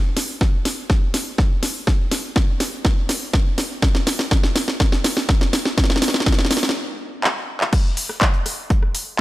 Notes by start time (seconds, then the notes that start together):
0.17 snare, open hi-hat
0.41 kick, snare
0.65 snare, open hi-hat
0.90 kick, snare
1.14 snare, open hi-hat
1.38 kick, snare
1.63 snare, open hi-hat
1.87 kick, snare
2.12 snare, open hi-hat
2.36 kick, snare
2.60 snare, open hi-hat
2.85 kick, snare
3.09 snare, open hi-hat
3.33 kick, snare
3.58 snare, open hi-hat
3.82 kick, snare
3.95 snare
4.07 snare, open hi-hat
4.19 snare
4.31 kick, snare
4.44 snare
4.56 snare, open hi-hat
4.68 snare
4.80 kick, snare
4.92 snare
5.04 snare, open hi-hat
5.17 snare
5.29 kick, snare
5.41 snare
5.53 snare, open hi-hat
5.65 snare
5.78 kick, snare
5.84 snare
5.90 snare
5.96 snare
6.02 snare, open hi-hat
6.08 snare
6.14 snare
6.20 snare
6.26 kick, snare
6.32 snare
6.39 snare
6.45 snare
6.51 snare, open hi-hat
6.57 snare
6.63 snare
6.69 snare
7.24 clap
7.61 clap
7.73 kick, cross-stick, closed hi-hat, crash
7.97 closed hi-hat, open hi-hat
8.09 cross-stick, snare
8.21 kick, snare, clap, closed hi-hat
8.34 closed hi-hat
8.46 cross-stick, closed hi-hat, open hi-hat
8.70 kick, closed hi-hat
8.83 cross-stick
8.95 closed hi-hat, open hi-hat